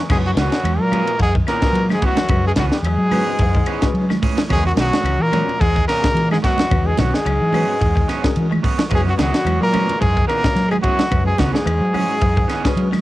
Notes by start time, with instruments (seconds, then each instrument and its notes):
0.10 fingered electric bass F#2, trombone section G#2, clean electric guitar C#3 E3 B3 C#4 G#4, tenor saxophone G#3, reed electric piano G#3 C#4 F#4 B4, trumpet G#4, kick, crash, low conga, claves
0.26 trombone section F#2, tenor saxophone F#3, trumpet F#4
0.36 fingered electric bass C#2, trombone section F#2, clean electric guitar D#3 E3 B3 C#4 G#4, tenor saxophone F#3, trumpet F#4, snare, ride bell, high conga
0.52 snare, ride bell
0.64 fingered electric bass E2, muted clean electric guitar stroke, ride bell, high conga, claves
0.79 trombone section A#2, fingered electric bass F#3, tenor saxophone A#3, trumpet A#4
0.91 clean electric guitar E3 B3 C#4 G#4, reed electric piano G#3 C#4 F#4 B4, ride bell, high conga, low conga, claves
1.07 ride bell
1.18 fingered electric bass F#2, trombone section G#2, clean electric guitar E3, tenor saxophone G#3, trumpet G#4, kick, ride bell
1.35 clean electric guitar D#3, kick
1.46 trombone section A#2, clean electric guitar E3 B3 C#4 G#4, tenor saxophone A#3, trumpet A#4, snare, ride bell, claves
1.62 clean electric guitar E3 B3 C#4 G#4, reed electric piano G#3 C#4 F#4 B4, kick, snare, ride bell
1.73 fingered electric bass F#3, ride bell
1.89 trombone section G#2, clean electric guitar D#3, tenor saxophone G#3, trumpet G#4, snare, high conga, claves
2.01 trombone section F#2, clean electric guitar E3 B3 C#4, kick, ride bell
2.06 tenor saxophone F#3, trumpet F#4
2.17 clean electric guitar E3, snare, ride bell, high conga
2.28 fingered electric bass F#2, clean electric guitar C#3, reed electric piano G#3 C#4 F#4 B4, kick, ride bell, low conga, claves
2.44 trombone section G#2, trumpet G#4
2.48 tenor saxophone G#3
2.56 fingered electric bass C#2, trombone section F#2, clean electric guitar D#3 E3 B3 C#4 G#4, trumpet F#4, kick, snare, ride bell, high conga
2.60 tenor saxophone F#3
2.72 trombone section G#2, trumpet G#4, snare
2.76 tenor saxophone G#3
2.83 fingered electric bass E2, clean electric guitar F#3, ride bell, claves
2.98 fingered electric bass F#3
3.11 clean electric guitar E3 B3 C#4 G#4, reed electric piano G#3 C#4 F#4 B4, muted clean electric guitar stroke, open hi-hat, high conga, low conga, claves
3.39 fingered electric bass F#2, clean electric guitar E3, kick, ride bell
3.55 clean electric guitar D#3, kick
3.66 clean electric guitar E3 B3 C#4 G#4, ride bell, claves
3.82 clean electric guitar C#3, reed electric piano G#3 C#4 F#4 B4, kick, snare, ride bell
3.94 fingered electric bass F#3, ride bell
4.10 clean electric guitar D#3, snare, high conga, claves
4.22 clean electric guitar E3 C#4 G#4, kick, open hi-hat, high conga
4.38 clean electric guitar E3, snare, ride bell, high conga
4.49 fingered electric bass E2, trombone section G#2, clean electric guitar C#3 F#3 B3 C#4 G#4, reed electric piano G#3 C#4 F#4 A#4, tenor saxophone G#3, trumpet G#4, kick, ride bell, low conga, claves
4.66 trombone section F#2, tenor saxophone F#3, trumpet F#4
4.76 fingered electric bass B1, trombone section F#2, clean electric guitar D#3 F#3 B3 C#4 G#4, tenor saxophone F#3, trumpet F#4, snare, ride bell, high conga
4.93 snare, ride bell, high conga
5.03 fingered electric bass C#2, clean electric guitar E3, ride bell, claves
5.18 trombone section A#2, fingered electric bass E3, tenor saxophone A#3, trumpet A#4
5.32 clean electric guitar F#3 B3 C#4 G#4, reed electric piano G#3 C#4 F#4 A#4, ride bell, high conga, low conga, claves
5.48 ride bell, low conga
5.58 fingered electric bass E2, trombone section G#2, clean electric guitar E3, tenor saxophone G#3, trumpet G#4, kick, ride bell
5.76 clean electric guitar D#3, kick
5.85 trombone section A#2, clean electric guitar F#3 B3, tenor saxophone A#3, trumpet A#4, ride bell, claves
5.89 clean electric guitar C#4 G#4, snare
6.02 clean electric guitar C#3, reed electric piano G#3 C#4 F#4 G#4, kick, snare, ride bell
6.15 fingered electric bass E3, ride bell
6.31 trombone section G#2, clean electric guitar D#3, tenor saxophone G#3, trumpet G#4, snare, high conga, claves
6.42 trombone section F#2, clean electric guitar F#3 B3, tenor saxophone F#3, trumpet F#4, muted clean electric guitar stroke, kick, snare, ride bell
6.58 clean electric guitar E3, snare, ride bell, high conga
6.70 fingered electric bass E2, clean electric guitar C#3, reed electric piano G#3 C#4 F#4 B4, kick, ride bell, low conga, claves
6.85 trombone section G#2, tenor saxophone G#3, trumpet G#4
6.97 fingered electric bass B1, trombone section F#2, clean electric guitar D#3 B3 C#4, tenor saxophone F#3, trumpet F#4, kick, snare, ride bell, high conga
7.12 trombone section G#2, tenor saxophone G#3, trumpet G#4, snare
7.26 fingered electric bass C#2, clean electric guitar F#3, ride bell, claves
7.41 fingered electric bass E3
7.53 clean electric guitar F#3 B3 C#4 G#4, reed electric piano G#3 C#4 F#4 B4, open hi-hat, high conga, low conga, claves
7.81 fingered electric bass E2, clean electric guitar E3, kick, ride bell
7.96 clean electric guitar D#3, kick
8.08 clean electric guitar F#3 B3 C#4 G#4, snare, ride bell, claves
8.24 clean electric guitar C#3, reed electric piano G#3 C#4 F#4 A#4, kick, snare, ride bell
8.36 fingered electric bass E3, ride bell
8.51 clean electric guitar D#3, high conga, claves
8.63 clean electric guitar F#3 B3 C#4 G#4, kick, open hi-hat
8.79 clean electric guitar E3, snare, ride bell, high conga
8.90 fingered electric bass F#2, trombone section G#2, clean electric guitar C#3 E3 B3 C#4 G#4, reed electric piano G#3 C#4 F#4 B4, tenor saxophone G#3, kick, ride bell, low conga, claves
8.95 trumpet G#4
9.07 trombone section F#2, tenor saxophone F#3, trumpet F#4
9.18 fingered electric bass C#2, trombone section F#2, clean electric guitar D#3 E3 B3 G#4, tenor saxophone F#3, muted clean electric guitar stroke, snare, ride bell, high conga
9.22 trumpet F#4
9.34 snare, ride bell
9.45 fingered electric bass E2, clean electric guitar E3, ride bell, high conga, claves
9.59 trombone section A#2, fingered electric bass F#3, tenor saxophone A#3, trumpet A#4
9.72 clean electric guitar E3 B3 C#4 G#4, reed electric piano G#3 C#4 F#4 B4, ride bell, high conga, low conga, claves
9.89 ride bell, low conga
9.98 fingered electric bass F#2, trombone section G#2, clean electric guitar E3, tenor saxophone G#3, trumpet G#4, ride bell
10.02 kick
10.17 clean electric guitar D#3, kick
10.25 trombone section A#2, clean electric guitar E3 B3 C#4 G#4, tenor saxophone A#3, trumpet A#4
10.29 snare, ride bell, claves
10.44 clean electric guitar C#3, reed electric piano G#3 C#4 F#4 C#5, kick, snare, ride bell
10.56 fingered electric bass F#3, snare, ride bell
10.68 trombone section G#2, clean electric guitar D#3, tenor saxophone G#3, trumpet G#4, claves
10.72 high conga
10.82 trombone section F#2, clean electric guitar E3 B3 C#4 G#4, tenor saxophone F#3, trumpet F#4, kick, ride bell
10.99 clean electric guitar E3, snare, ride bell, high conga
11.11 fingered electric bass F#2, clean electric guitar C#3, reed electric piano G#3 C#4 F#4 B4, kick, ride bell, low conga, claves
11.23 trombone section G#2, tenor saxophone G#3, trumpet G#4
11.35 fingered electric bass C#2, trombone section F#2, clean electric guitar D#3 E3 B3 C#4, tenor saxophone F#3, high conga
11.39 trumpet F#4, clean electric guitar G#4, kick, snare, ride bell
11.51 trombone section G#2, tenor saxophone G#3, trumpet G#4, high conga
11.55 snare
11.66 fingered electric bass E2, clean electric guitar E3, ride bell, claves
11.81 fingered electric bass F#3
11.93 clean electric guitar E3 F#3 C#4 G#4, reed electric piano G#3 C#4 F#4 G#4, open hi-hat, high conga, low conga, claves
12.21 fingered electric bass F#2, clean electric guitar E3, kick, ride bell
12.37 clean electric guitar D#3, kick
12.48 clean electric guitar E3 B3 C#4 G#4, snare, ride bell, claves
12.64 clean electric guitar C#3 C#4 G#4, reed electric piano G#3 C#4 F#4 B4, muted clean electric guitar stroke, kick, snare, ride bell
12.77 fingered electric bass F#3, ride bell
12.92 clean electric guitar D#3, snare, high conga, claves